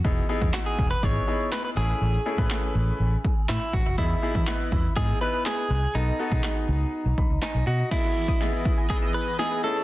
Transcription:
<<
  \new Staff \with { instrumentName = "Synth arpeggio sound" } { \time 4/4 \key e \major \tempo 4 = 122 r1 | r1 | r1 | r1 |
e'16 r8 dis'''16 r16 e'16 b'16 gis''16 dis'''16 e'''16 e'16 r16 gis''16 dis'''16 r16 a'16 | }
  \new Staff \with { instrumentName = "Clean electric guitar" } { \time 4/4 \key e \major r4 fis'16 gis'8 b'16 cis''4 b'16 b'16 gis'8~ | gis'2. e'8 fis'8 | e'2 gis'8 b'8 gis'4 | dis'2. dis'8 fis'8 |
e'2 gis'8 b'8 gis'8 a'8 | }
  \new Staff \with { instrumentName = "Grand piano" } { \time 4/4 \key e \major <b dis' e' gis'>8 <b dis' e' gis'>8 <b dis' e' fis'>8. r16 <b dis' e' gis'>8 <b dis' e' gis'>4 <a cis' e' gis'>8~ | <a cis' e' gis'>16 r16 <a cis' e' gis'>16 <a cis' e' b'>4. r4. r16 | <b dis' e' gis'>8 <b dis' e' gis'>8 <b e' b' dis''>8. r16 <b dis' e' gis'>8 <b dis' e' b'>4~ <b dis' e' b'>16 r16 | <b dis' fis' a'>8 <b dis' fis' a'>16 <b dis' fis'>4. r16 b''8 gis''8 dis''8 |
<b e' gis'>8. r16 <b e' gis' dis''>8. r16 <b dis' e' gis'>8. r16 <b dis' e' gis'>8 <a cis' e' gis'>8 | }
  \new Staff \with { instrumentName = "Analog synth pad" } { \time 4/4 \key e \major << { r1 | r1 | r1 | r1 |
<e b dis''>2.~ <e b dis''>8 <e a cis''>8 | } \\ { r1 | r1 | r1 | r1 |
gis'1 | } >> }
  \new Staff \with { instrumentName = "Fingered electric bass" } { \clef bass \time 4/4 \key e \major e,,8 r16 e,16 r8 e,,8 gis,,8 r4 a,,8 | a,,8 r16 a,16 r8 a,,8 a,,8 r8 a,16 r16 a,,16 f,,16 | e,8 r16 e16 r8 e,8 gis,8 r4 c,8 | b,,8 r16 b,16 r8 cis,8 r16 b,,16 b,,16 cis,16 r16 b,,16 b,8 |
r1 | }
  \new DrumStaff \with { instrumentName = "Drums" } \drummode { \time 4/4 bd8. bd16 <hc sn>8 bd8 bd4 <hc sn>4 | r8. bd16 <hc sn>4 r8 bd8 <hc sn>8 bd8 | bd8. bd16 <hc sn>8 bd8 bd4 <hc sn>4 | r8. bd16 <hc sn>4 r8 bd8 <hc sn>4 |
<cymc bd sn>8. bd16 sn8 bd8 <bd sn>4 sn4 | }
>>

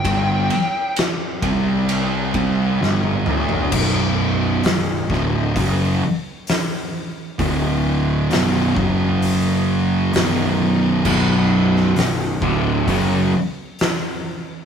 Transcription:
<<
  \new Staff \with { instrumentName = "Lead electric guitar" } { \time 4/4 \key b \phrygian \tempo 4 = 66 g''4 r2. | r1 | r1 | r1 | }
  \new Staff \with { instrumentName = "Distorted electric guitar" } { \clef bass \time 4/4 \key b \phrygian <g, d g>8 r4 <c g c'>4 <c g c'>8 <g, d g>8 <d a d'>8 | <b,, fis, b,>4 <b,, fis,>8 <d, a, d>8 <fis, cis fis>8 r4. | <d, a, d>4 <b,, fis, b,>8 <fis, cis fis>4. <b,, fis, b,>4 | <b,, fis, b,>4 <b,, fis,>8 <d, a, d>8 <fis, cis fis>8 r4. | }
  \new Staff \with { instrumentName = "Distorted electric guitar" } { \clef bass \time 4/4 \key b \phrygian <g, d g>8 r4 <c g c'>4 <c g c'>8 <g, d g>8 <d a d'>8 | <b,, fis, b,>4 <b,, fis,>8 <d, a, d>8 <fis, cis fis>8 r4. | <d, a, d>4 <b,, fis, b,>8 <fis, cis fis>4. <b,, fis, b,>4 | <b,, fis, b,>4 <b,, fis,>8 <d, a, d>8 <fis, cis fis>8 r4. | }
  \new Staff \with { instrumentName = "Overdriven electric guitar" } { \clef bass \time 4/4 \key b \phrygian r1 | r1 | r1 | <b,, fis, b,>4 <b,, fis,>8 <d, a, d>8 <fis, cis fis>8 r4. | }
  \new Staff \with { instrumentName = "Picked electric bass" } { \clef bass \time 4/4 \key b \phrygian g,,8 r4 c,4 c,8 g,,8 d,8 | b,,,4 b,,,8 d,,8 fis,,8 r4. | d,,4 b,,,8 fis,,4. b,,,4 | b,,,4 b,,,8 d,,8 fis,,8 r4. | }
  \new DrumStaff \with { instrumentName = "Drums" } \drummode { \time 4/4 <bd cymr>8 cymr8 <cymr sn>8 <bd cymr>8 cymr8 <bd cymr>8 sn16 tommh16 toml16 tomfh16 | <cymc bd>4 <hho sn>8 <bd sn>8 <hho bd>4 <hho sn>4 | <hho bd>4 <hho sn>8 bd8 hho4 <hho sn>4 | <cymc bd>8. sn16 <hho sn>8 bd8 <hho bd>4 <hho sn>4 | }
>>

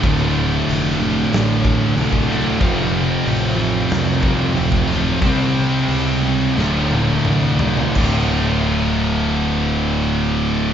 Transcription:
<<
  \new Staff \with { instrumentName = "Distorted electric guitar" } { \clef bass \time 4/4 \key d \minor \tempo 4 = 90 <d, a, d a f'>2.~ <d, a, d a f'>8 <d, a, d a f'>8 | <f, c f a c' f'>2.~ <f, c f a c' f'>8 <f, c f a c' f'>8 | <c g c' ees' g' c''>2 <d, a, d a f'>2 | <d, a, d a f'>1 | }
  \new Staff \with { instrumentName = "Distorted electric guitar" } { \clef bass \time 4/4 \key d \minor <d, a, d>4. <d, a, d>4. <d, a, d>4 | <f, c f>4. <f, c f>4. <f, c f>4 | <c g c'>4. <c g c'>8 <d, a, d>4. <d, a, d>8 | <d, a, d>1 | }
  \new Staff \with { instrumentName = "Distorted electric guitar" } { \clef bass \time 4/4 \key d \minor <d, a, d>2~ <d, a, d>8 <d, a, d>8 <d, a, d>4 | <f, c f>2~ <f, c f>8 <f, c f>8 <f, c f>4 | <c g c'>2 <d, a, d>2 | <d, a, d>1 | }
  \new Staff \with { instrumentName = "Picked electric bass" } { \clef bass \time 4/4 \key d \minor d,,4 f,,4 a,,4 c,4 | f,,4 a,,4 c,4 d,,4 | c,4 cis,4 d,,4 c,4 | d,,1 | }
  \new DrumStaff \with { instrumentName = "Drums" } \drummode { \time 4/4 <hho bd>4 hho4 <hho sn>8 bd8 hho16 bd16 sn8 | <hho bd>4 hho4 <hho sn>8 bd8 hho16 bd16 sn8 | <hho bd>4 hho4 sn8 tommh16 tommh16 toml8 tomfh16 tomfh16 | <cymc bd>4 r4 r4 r4 | }
>>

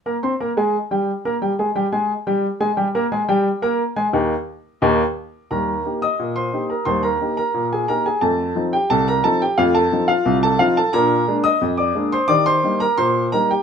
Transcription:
<<
  \new Staff \with { instrumentName = "Upright piano" } { \time 2/4 \key ees \major \tempo 4 = 88 <bes bes' bes''>16 <c' c'' c'''>16 <bes bes' bes''>16 <aes aes' aes''>8 <g g' g''>8 <bes bes' bes''>16 | <g g' g''>16 <aes aes' aes''>16 <g g' g''>16 <aes aes' aes''>8 <g g' g''>8 <aes aes' aes''>16 | <g g' g''>16 <bes bes' bes''>16 <aes aes' aes''>16 <g g' g''>8 <bes bes' bes''>8 <aes aes' aes''>16 | <ees, bes ees' g'>8 r8 <ees, bes ees' g'>8 r8 |
<bes' bes''>8. <ees'' ees'''>8 <c'' c'''>8 <bes' bes''>16 | <c'' c'''>16 <bes' bes''>8 <bes' bes''>8 <aes' aes''>16 <bes' bes''>16 <aes' aes''>16 | <a' a''>8. <g' g''>16 <a' a''>16 <bes' bes''>16 <a' a''>16 <g' g''>16 | <f' f''>16 <a' a''>8 <f' f''>8 <a' a''>16 <f' f''>16 <a' a''>16 |
<bes' bes''>8. <ees'' ees'''>8 <d'' d'''>8 <c'' c'''>16 | <d'' d'''>16 <c'' c'''>8 <bes' bes''>16 <c'' c'''>8 <bes' bes''>16 <g' g''>16 | }
  \new Staff \with { instrumentName = "Upright piano" } { \time 2/4 \key ees \major r2 | r2 | r2 | r2 |
<ees, g>8 <bes ees' g'>8 bes,8 <bes ees' g'>8 | <ees, g>8 <bes ees' g'>8 bes,8 <bes ees' g'>8 | <f, a>8 <f c' ees'>8 c,8 <f c' ees'>8 | <f, a>8 <f c' ees'>8 c,8 <f c' ees'>8 |
<bes, d'>8 <aes bes d'>8 f,8 <aes bes d'>8 | <ees g'>8 <g bes ees'>8 bes,8 <g bes ees'>8 | }
>>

